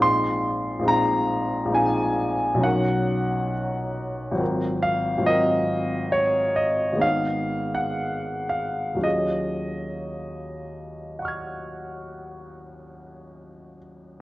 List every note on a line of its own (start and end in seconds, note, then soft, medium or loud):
0.00 0.78 A#1 medium
0.00 0.79 G#3 soft
0.00 0.81 C4 soft
0.00 0.84 D#4 soft
0.00 0.85 F4 soft
0.00 0.88 C6 medium
0.79 1.64 A#1 medium
0.79 1.66 G#3 soft
0.79 1.68 C4 soft
0.85 1.71 D#4 soft
0.85 1.72 F4 soft
0.85 1.75 A#5 medium
1.65 2.57 A#1 medium
1.65 2.58 G#3 soft
1.70 2.59 C4 soft
1.70 2.59 D#4 soft
1.74 2.61 F4 soft
1.74 2.64 G#5 medium
2.54 4.31 B1 medium
2.54 4.32 F#3 soft
2.58 4.33 C#4 medium
2.58 4.34 D#4 soft
2.63 4.36 A#4 soft
2.63 3.54 F#5 medium
4.31 5.16 G#1 medium
4.31 5.18 F#3 soft
4.31 5.20 C4 soft
4.37 5.23 F4 soft
4.37 5.24 A#4 soft
4.83 5.26 F5 medium
5.18 6.91 G#1 soft
5.18 6.96 F#3 soft
5.22 6.97 C4 soft
5.22 6.98 F4 soft
5.26 6.99 A#4 soft
5.26 6.14 D#5 medium
6.12 6.57 C#5 medium
6.56 7.03 D#5 medium
6.93 8.95 G#1 soft
6.93 8.96 G#3 soft
6.97 8.97 B3 soft
6.97 8.98 D#4 soft
7.01 8.99 G#4 soft
7.01 7.75 F5 medium
7.75 8.51 F#5 medium
8.49 9.04 F5 medium
8.95 14.19 D#2 soft
8.95 14.20 F#3 soft
8.99 14.21 C#4 soft
8.99 14.21 F4 soft
8.99 14.21 G#4 soft
9.04 13.78 D#5 medium
11.19 14.21 F#5 soft
11.19 14.21 C#6 soft
11.25 14.21 F6 soft
11.25 14.21 G#6 soft